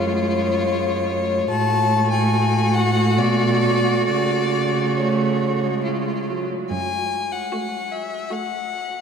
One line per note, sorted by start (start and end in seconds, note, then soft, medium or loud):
0.00 1.47 F#2 medium
0.00 1.47 G#3 soft
0.00 1.47 F4 medium
0.00 1.47 C#5 medium
1.50 3.18 A2 medium
1.50 4.84 A3 medium
1.50 5.81 F#4 medium
1.50 2.10 A5 medium
2.11 2.76 G#5 medium
2.74 3.20 F#5 medium
3.17 4.08 B2 medium
3.17 4.07 D5 medium
4.07 6.51 C#3 soft
4.07 4.99 D5 medium
4.97 5.66 A3 medium
4.97 5.85 C#5 medium
5.64 6.31 G#3 soft
5.85 6.47 F4 soft
6.30 6.72 F#3 soft
6.71 7.36 F#2 soft
6.71 7.33 G#5 medium
7.32 7.94 F#5 medium
7.52 8.12 A3 soft
7.52 8.12 F#4 soft
7.92 8.34 E5 medium
8.31 8.91 A3 soft
8.31 8.91 F#4 soft
8.31 9.01 F#5 medium